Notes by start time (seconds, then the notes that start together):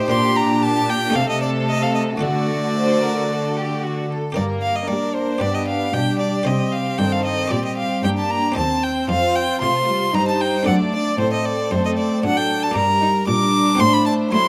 Already playing: D#4 G4 C5
0.08 A#2 D4 G4 A#4 C6
0.37 A#5
0.62 G4 A5
0.90 G5
1.10 A3 D#4 A4
1.15 C3 A3 A4 F5
1.29 D#5
1.42 D5
1.69 D#5
1.82 F5
1.95 D#5
2.18 A3 F#4 A4 D5
2.22 D3 F#4
2.77 C5
3.02 A#4
3.30 A4
3.56 G4
3.83 F#4
4.09 A4
4.32 G2 G3 G4 A#4 D5
4.36 G2 A#3 A#4
4.62 F5
4.76 D#5
4.87 G3 A#3 D4 D5
5.15 C5
5.38 G2 B3 G4 B4 D5
5.54 D#5
5.68 F5
5.94 B2 G3 D4 G4 G5
6.20 D5
6.43 C3 G3 C4 G4 C5 D#5
6.72 F5
6.98 G2 D#3 A4 G5
7.12 F5
7.25 D#5
7.48 A#2 G3 G4 D5
7.52 A#2
7.65 D#5
7.77 F5
8.03 G2 A#3 D4 G4 G5
8.18 A5
8.30 A#5
8.52 C4 G4 D#5
8.56 D#2 C4 C5 A5
8.83 G5
9.09 F2 F4 F5
9.35 G5
9.61 C3 A3 C5 C6
9.88 G3
10.14 G2 G3 D#4 C5 A#5
10.28 A5
10.41 G5
10.63 C4 D4 A4 D5 F#5
10.67 F#2 A3 D5
10.94 D5
11.18 A2 A3 C4 A4 C5
11.33 D#5
11.46 D5
11.71 F#2 A3 C4 C5
11.85 D#5
11.98 D5
12.24 A2 F#3 D4 A4 F#5
12.37 G5
12.63 A5
12.71 A#3 D4 G4 D5
12.75 G2 G3 A#4 A#5
13.02 D#4
13.27 A#2 G3 D4 A#4 D6
13.75 C4 F#4 C5
13.79 A2 A3 C5 C6
13.94 B5
14.06 A5
14.32 F#3 A3 E4 C6